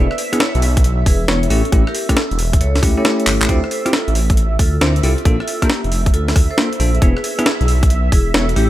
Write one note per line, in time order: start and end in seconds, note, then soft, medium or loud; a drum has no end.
0.00 3.48 E5 medium
0.11 cross-stick soft
0.18 0.30 B4 medium
0.18 0.30 D5 medium
0.18 open hi-hat loud
0.33 0.38 B3 loud
0.33 0.38 D4 medium
0.33 0.38 E4 medium
0.33 0.38 G#4 loud
0.33 cross-stick medium
0.33 closed hi-hat medium
0.40 0.56 E4 medium
0.40 0.56 C#5 medium
0.40 snare loud
0.55 1.04 B1 loud
0.55 closed hi-hat soft
0.62 open hi-hat loud
0.77 kick loud
0.77 closed hi-hat medium
0.84 closed hi-hat medium
1.06 1.26 E1 medium
1.06 1.18 G#4 medium
1.06 1.18 B4 medium
1.06 kick loud
1.06 open hi-hat loud
1.28 1.48 E1 medium
1.28 1.39 B3 medium
1.28 1.39 D4 medium
1.28 1.39 E4 medium
1.28 1.40 E4 medium
1.28 1.39 C#5 loud
1.28 1.40 C#5 medium
1.28 snare loud
1.43 closed hi-hat medium
1.50 1.63 A1 loud
1.50 1.61 A3 medium
1.50 1.67 C#4 medium
1.50 1.61 C#4 medium
1.50 1.61 E4 medium
1.50 1.61 G4 medium
1.50 1.67 A4 loud
1.50 open hi-hat loud
1.65 closed hi-hat soft
1.72 1.85 A1 loud
1.72 1.83 A3 medium
1.72 1.83 C#4 medium
1.72 1.83 E4 medium
1.72 1.83 G4 loud
1.72 kick loud
1.72 closed hi-hat medium
1.87 1.93 G4 medium
1.87 1.93 A#4 medium
1.87 cross-stick soft
1.95 open hi-hat loud
2.09 2.14 A3 loud
2.09 2.14 C#4 medium
2.09 2.20 C#4 medium
2.09 2.14 E4 medium
2.09 2.14 G4 loud
2.09 2.20 A4 medium
2.09 kick medium
2.09 cross-stick medium
2.09 closed hi-hat medium
2.17 snare loud
2.31 2.59 E1 medium
2.31 closed hi-hat soft
2.39 open hi-hat loud
2.53 kick loud
2.53 closed hi-hat medium
2.61 2.80 C#2 medium
2.61 2.77 A4 medium
2.61 2.77 C#5 medium
2.61 closed hi-hat medium
2.75 snare medium
2.75 open hi-hat medium
2.83 2.95 C#2 medium
2.83 2.95 A3 medium
2.83 2.95 C#4 medium
2.83 2.95 E4 medium
2.83 2.95 G4 loud
2.83 kick loud
2.83 cross-stick soft
2.83 open hi-hat loud
2.97 3.03 A3 medium
2.97 3.03 C#4 medium
2.97 3.03 E4 medium
2.97 3.03 G4 loud
2.97 3.43 A4 medium
2.97 3.43 C#5 medium
3.05 3.47 A3 medium
3.05 3.47 C#4 medium
3.05 3.47 E4 medium
3.05 3.47 G4 medium
3.05 snare loud
3.20 closed hi-hat medium
3.27 3.39 G1 loud
3.27 clap medium
3.27 open hi-hat loud
3.42 3.48 A1 medium
3.42 clap loud
3.42 closed hi-hat soft
3.49 3.61 D2 loud
3.49 3.59 C4 medium
3.49 3.59 E4 medium
3.49 3.59 F4 medium
3.49 3.59 G4 loud
3.49 3.61 A4 medium
3.49 3.61 C5 loud
3.49 8.70 E5 medium
3.49 kick loud
3.49 closed hi-hat medium
3.64 cross-stick soft
3.71 3.83 A4 medium
3.71 3.83 C5 medium
3.71 open hi-hat loud
3.86 3.91 C4 loud
3.86 3.91 E4 medium
3.86 3.91 F4 medium
3.86 3.91 G4 loud
3.86 cross-stick medium
3.86 closed hi-hat medium
3.93 4.09 F4 medium
3.93 4.09 A4 medium
3.93 snare loud
4.08 4.57 A1 medium
4.08 closed hi-hat soft
4.15 open hi-hat loud
4.30 kick loud
4.30 closed hi-hat medium
4.37 closed hi-hat medium
4.59 4.79 D2 medium
4.59 4.71 F4 medium
4.59 4.71 A4 medium
4.59 kick loud
4.59 open hi-hat loud
4.81 5.01 D2 medium
4.81 4.91 C4 medium
4.81 4.93 D4 medium
4.81 4.91 E4 medium
4.81 4.91 F4 medium
4.81 4.93 A#4 medium
4.81 4.91 C5 loud
4.81 snare loud
4.96 closed hi-hat soft
5.03 5.16 C2 loud
5.03 5.14 C4 medium
5.03 5.14 E4 medium
5.03 5.20 F4 medium
5.03 5.14 F4 medium
5.03 5.14 G4 medium
5.03 5.20 A4 loud
5.03 open hi-hat loud
5.18 closed hi-hat soft
5.25 5.38 A#1 loud
5.25 5.36 A#3 medium
5.25 5.36 D4 medium
5.25 5.36 F4 medium
5.25 5.36 A4 loud
5.25 kick loud
5.25 closed hi-hat medium
5.40 5.46 F4 medium
5.40 5.46 A4 medium
5.40 cross-stick soft
5.48 open hi-hat loud
5.62 5.67 A#3 loud
5.62 5.73 A#3 medium
5.62 5.67 D4 medium
5.62 5.67 F4 medium
5.62 5.73 G4 medium
5.62 5.67 A4 loud
5.62 kick medium
5.62 cross-stick medium
5.62 closed hi-hat medium
5.70 snare loud
5.84 6.12 F1 medium
5.84 closed hi-hat soft
5.92 open hi-hat loud
6.06 kick loud
6.06 closed hi-hat medium
6.14 6.33 D2 medium
6.14 6.30 F4 medium
6.14 6.30 A4 loud
6.14 closed hi-hat medium
6.28 snare medium
6.28 open hi-hat medium
6.36 6.48 D2 loud
6.36 kick loud
6.36 cross-stick soft
6.36 open hi-hat loud
6.51 6.96 A4 medium
6.51 6.96 C5 medium
6.58 6.68 A#3 medium
6.58 6.68 D4 medium
6.58 6.68 F4 medium
6.58 6.68 C5 loud
6.58 snare loud
6.73 closed hi-hat soft
6.80 6.99 A#1 loud
6.80 6.90 A#3 medium
6.80 6.90 D4 medium
6.80 6.90 F4 medium
6.80 6.90 A4 medium
6.80 open hi-hat loud
6.95 closed hi-hat soft
7.02 7.14 E1 loud
7.02 7.12 B3 medium
7.02 7.12 D4 medium
7.02 7.12 E4 medium
7.02 7.12 G#4 medium
7.02 7.14 G#4 medium
7.02 7.14 B4 loud
7.02 kick loud
7.02 closed hi-hat medium
7.17 cross-stick soft
7.24 7.36 G#4 medium
7.24 7.36 B4 medium
7.24 open hi-hat loud
7.39 7.44 B3 loud
7.39 7.44 D4 medium
7.39 7.44 E4 medium
7.39 7.44 G#4 loud
7.39 cross-stick medium
7.39 closed hi-hat medium
7.46 7.62 E4 medium
7.46 7.62 G#4 medium
7.46 snare loud
7.61 8.10 B1 loud
7.61 closed hi-hat soft
7.68 open hi-hat loud
7.83 kick loud
7.83 closed hi-hat medium
7.90 closed hi-hat medium
8.12 8.32 E1 medium
8.12 8.24 E4 medium
8.12 8.24 G#4 medium
8.12 kick loud
8.12 open hi-hat loud
8.34 8.54 E1 medium
8.34 8.44 B3 medium
8.34 8.44 D4 medium
8.34 8.44 E4 medium
8.34 8.46 F#4 medium
8.34 8.46 A4 medium
8.34 8.44 C#5 loud
8.34 snare loud
8.49 closed hi-hat soft
8.56 8.68 A1 loud
8.56 8.67 A3 medium
8.56 8.67 C#4 medium
8.56 8.67 E4 medium
8.56 8.70 E4 medium
8.56 8.67 G4 medium
8.56 8.70 G4 loud
8.56 open hi-hat loud